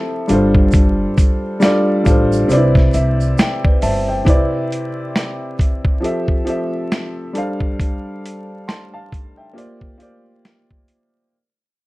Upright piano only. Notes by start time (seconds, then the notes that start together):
Already playing: F3 C4 E4 G4 A4 C5 E5
0.28 G3 D4 F4 A4
0.32 C5
1.60 G3 D4 F4 A4
1.65 D5
2.04 G3 D4 F4 A4
2.09 C5
2.48 C3 C4 D4 B4
2.53 D5
2.57 E4
2.94 E5
3.38 G5
3.64 B4 D5
3.83 C5 E5 A5
4.08 E5 G5
4.25 C3 C4 E4 B4
4.29 D5
6.00 F3 C4 G4 A4
6.05 E5
6.45 F3 C4 G4 A4
6.50 E5
7.33 G3 D4 A4 C5
7.38 F5
8.68 A5 C6
8.93 F5 A5
9.37 E5 G5
9.53 A#3 F4 G4 C5
9.58 D5
9.98 A#3 F4 G4 C5
10.02 D5